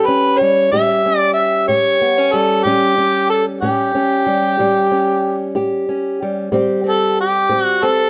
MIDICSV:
0, 0, Header, 1, 3, 480
1, 0, Start_track
1, 0, Tempo, 642398
1, 1991, Time_signature, 12, 3, 24, 8
1, 6051, End_track
2, 0, Start_track
2, 0, Title_t, "Harmonica"
2, 0, Program_c, 0, 22
2, 42, Note_on_c, 0, 71, 94
2, 286, Note_on_c, 0, 73, 92
2, 297, Note_off_c, 0, 71, 0
2, 531, Note_off_c, 0, 73, 0
2, 536, Note_on_c, 0, 76, 101
2, 887, Note_off_c, 0, 76, 0
2, 887, Note_on_c, 0, 74, 101
2, 994, Note_off_c, 0, 74, 0
2, 997, Note_on_c, 0, 76, 95
2, 1237, Note_off_c, 0, 76, 0
2, 1254, Note_on_c, 0, 73, 88
2, 1728, Note_on_c, 0, 69, 84
2, 1739, Note_off_c, 0, 73, 0
2, 1965, Note_on_c, 0, 67, 86
2, 1976, Note_off_c, 0, 69, 0
2, 2458, Note_off_c, 0, 67, 0
2, 2463, Note_on_c, 0, 69, 77
2, 2573, Note_off_c, 0, 69, 0
2, 2699, Note_on_c, 0, 67, 84
2, 4116, Note_off_c, 0, 67, 0
2, 5145, Note_on_c, 0, 69, 80
2, 5354, Note_off_c, 0, 69, 0
2, 5383, Note_on_c, 0, 67, 82
2, 5690, Note_off_c, 0, 67, 0
2, 5690, Note_on_c, 0, 66, 82
2, 5858, Note_on_c, 0, 69, 97
2, 5870, Note_off_c, 0, 66, 0
2, 6051, Note_off_c, 0, 69, 0
2, 6051, End_track
3, 0, Start_track
3, 0, Title_t, "Steel-string acoustic guitar"
3, 0, Program_c, 1, 25
3, 0, Note_on_c, 1, 45, 75
3, 0, Note_on_c, 1, 55, 64
3, 0, Note_on_c, 1, 67, 71
3, 60, Note_on_c, 1, 61, 57
3, 253, Note_off_c, 1, 45, 0
3, 304, Note_off_c, 1, 55, 0
3, 307, Note_on_c, 1, 55, 53
3, 540, Note_on_c, 1, 45, 66
3, 542, Note_off_c, 1, 55, 0
3, 544, Note_off_c, 1, 61, 0
3, 545, Note_on_c, 1, 55, 53
3, 547, Note_on_c, 1, 61, 53
3, 549, Note_off_c, 1, 67, 0
3, 552, Note_on_c, 1, 67, 65
3, 781, Note_off_c, 1, 61, 0
3, 790, Note_on_c, 1, 61, 54
3, 978, Note_off_c, 1, 45, 0
3, 1259, Note_on_c, 1, 45, 71
3, 1260, Note_off_c, 1, 67, 0
3, 1263, Note_on_c, 1, 67, 52
3, 1502, Note_off_c, 1, 61, 0
3, 1505, Note_on_c, 1, 59, 52
3, 1628, Note_off_c, 1, 59, 0
3, 1628, Note_on_c, 1, 61, 45
3, 1697, Note_off_c, 1, 45, 0
3, 1741, Note_off_c, 1, 55, 0
3, 1744, Note_on_c, 1, 55, 62
3, 1981, Note_on_c, 1, 45, 66
3, 1986, Note_off_c, 1, 61, 0
3, 1989, Note_off_c, 1, 55, 0
3, 1992, Note_on_c, 1, 55, 65
3, 1995, Note_on_c, 1, 61, 62
3, 2004, Note_off_c, 1, 67, 0
3, 2218, Note_off_c, 1, 61, 0
3, 2227, Note_on_c, 1, 61, 56
3, 2418, Note_off_c, 1, 45, 0
3, 2707, Note_on_c, 1, 45, 74
3, 2709, Note_off_c, 1, 61, 0
3, 2717, Note_on_c, 1, 61, 68
3, 2941, Note_off_c, 1, 61, 0
3, 2950, Note_on_c, 1, 61, 58
3, 3141, Note_off_c, 1, 45, 0
3, 3184, Note_off_c, 1, 55, 0
3, 3187, Note_on_c, 1, 55, 52
3, 3430, Note_on_c, 1, 45, 63
3, 3431, Note_off_c, 1, 55, 0
3, 3431, Note_off_c, 1, 61, 0
3, 3434, Note_on_c, 1, 55, 53
3, 3440, Note_on_c, 1, 61, 52
3, 3664, Note_off_c, 1, 61, 0
3, 3673, Note_on_c, 1, 61, 55
3, 3863, Note_off_c, 1, 45, 0
3, 4146, Note_on_c, 1, 45, 58
3, 4151, Note_on_c, 1, 67, 59
3, 4391, Note_off_c, 1, 61, 0
3, 4400, Note_on_c, 1, 61, 54
3, 4582, Note_off_c, 1, 45, 0
3, 4634, Note_off_c, 1, 55, 0
3, 4651, Note_on_c, 1, 55, 56
3, 4844, Note_off_c, 1, 67, 0
3, 4848, Note_off_c, 1, 61, 0
3, 4865, Note_off_c, 1, 55, 0
3, 4871, Note_on_c, 1, 45, 76
3, 4874, Note_on_c, 1, 55, 62
3, 4881, Note_on_c, 1, 60, 60
3, 4885, Note_on_c, 1, 67, 73
3, 5100, Note_off_c, 1, 60, 0
3, 5109, Note_on_c, 1, 60, 50
3, 5305, Note_off_c, 1, 45, 0
3, 5591, Note_off_c, 1, 60, 0
3, 5600, Note_on_c, 1, 45, 78
3, 5601, Note_on_c, 1, 60, 65
3, 5838, Note_off_c, 1, 60, 0
3, 5850, Note_on_c, 1, 60, 61
3, 6031, Note_off_c, 1, 45, 0
3, 6051, Note_off_c, 1, 55, 0
3, 6051, Note_off_c, 1, 60, 0
3, 6051, Note_off_c, 1, 67, 0
3, 6051, End_track
0, 0, End_of_file